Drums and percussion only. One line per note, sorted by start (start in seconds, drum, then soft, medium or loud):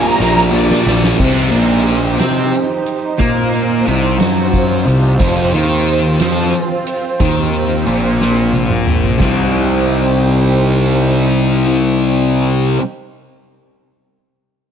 0.20 snare medium
0.37 snare medium
0.53 tambourine medium
0.71 snare medium
0.87 snare loud
0.87 tambourine soft
1.04 snare loud
1.20 kick medium
1.20 crash loud
1.20 tambourine medium
1.38 tambourine soft
1.54 closed hi-hat medium
1.54 tambourine soft
1.86 closed hi-hat medium
1.86 tambourine medium
2.20 snare loud
2.20 closed hi-hat medium
2.53 closed hi-hat medium
2.53 tambourine medium
2.86 closed hi-hat medium
3.20 kick loud
3.20 closed hi-hat medium
3.20 tambourine medium
3.37 tambourine soft
3.54 closed hi-hat medium
3.54 tambourine soft
3.87 closed hi-hat medium
3.87 tambourine medium
4.05 tambourine soft
4.20 snare loud
4.20 closed hi-hat loud
4.53 kick medium
4.53 closed hi-hat medium
4.53 tambourine medium
4.88 closed hi-hat medium
5.20 kick loud
5.20 closed hi-hat medium
5.20 tambourine medium
5.38 tambourine soft
5.54 closed hi-hat medium
5.54 tambourine soft
5.87 closed hi-hat medium
5.87 tambourine medium
6.05 tambourine soft
6.20 snare loud
6.20 closed hi-hat loud
6.52 closed hi-hat medium
6.52 tambourine medium
6.87 closed hi-hat medium
7.20 kick loud
7.20 closed hi-hat medium
7.20 tambourine medium
7.37 tambourine soft
7.54 closed hi-hat medium
7.70 tambourine soft
7.86 closed hi-hat medium
7.86 tambourine medium
8.20 snare medium
8.20 tambourine soft
8.37 tambourine soft
8.53 high tom medium
8.53 tambourine medium
8.70 mid tom medium
8.87 mid tom medium
9.04 floor tom medium
9.20 kick medium
9.20 snare medium
9.20 tambourine medium
9.20 crash medium